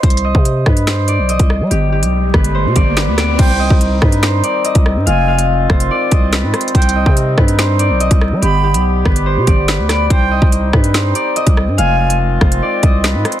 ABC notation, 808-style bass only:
X:1
M:4/4
L:1/16
Q:1/4=143
K:Cm
V:1 name="808-style bass" clef=bass
C,,3 C,3 G,,4- G,, =B,,,2 C,,2 G, | G,,,3 =B,,,3 G,,,3 =B,, G,,,3 D,,3 | C,,3 C,,3 G,,4 z3 C,,2 G,, | F,,,6 F,,,2 z2 C,,3 A,, z2 |
C,,3 C,3 G,,4- G,, =B,,,2 C,,2 G, | G,,,3 =B,,,3 G,,,3 =B,, G,,,3 D,,3 | C,,3 C,,3 G,,4 z3 C,,2 G,, | F,,,6 F,,,2 z2 C,,3 A,, z2 |]